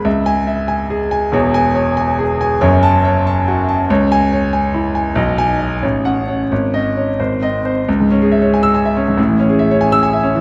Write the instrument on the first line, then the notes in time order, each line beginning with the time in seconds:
grand piano
0.05 C#2 E5
0.26 G#5
0.47 E5
0.68 G#5
0.90 G#4
1.11 G#5
1.32 E1 E2 C#5
1.54 G#5
1.75 C#5
1.97 G#5
2.19 G#4
2.41 G#5
2.61 F#1 F#2 C#5
2.83 A5
3.05 C#5
3.27 A5
3.48 F#4
3.69 A5
3.90 C#2 C#5
4.12 G#5
4.32 C#5
4.53 G#5
4.74 E4
4.95 G#5
5.15 B1 D#5
5.38 D#4 G#5
5.60 D#5
5.83 A1 C#5
6.05 C#4 F#5
6.28 C#5
6.51 G#1 C#5
6.74 C#4 D#5
6.97 C#5
7.20 G#1 C5
7.42 C4 D#5
7.65 C5
7.88 C#2
8.00 G#2
8.11 C#4
8.22 G#4
8.32 E5
8.42 C#5
8.54 G#5
8.63 E6
8.74 G#5
8.85 E5
8.97 C#4
9.08 G#2
9.17 A1 A2
9.28 E3
9.39 C#4
9.50 G#4
9.59 E5
9.71 C#5
9.81 G#5
9.92 E6
10.03 G#5
10.13 E5
10.23 C#4
10.35 E3